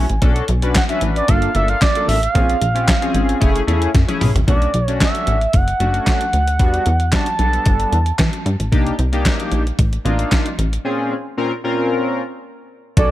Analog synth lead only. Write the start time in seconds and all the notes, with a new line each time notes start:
Already playing: G#5
0.76 F#5
0.89 E5
1.16 D5
1.29 F5
1.56 E5
1.69 F5
1.82 D5
2.08 E5
2.22 F5
4.48 D5
4.84 C#5
5.03 E5
5.56 F#5
6.08 F#5
7.14 A5
12.98 D5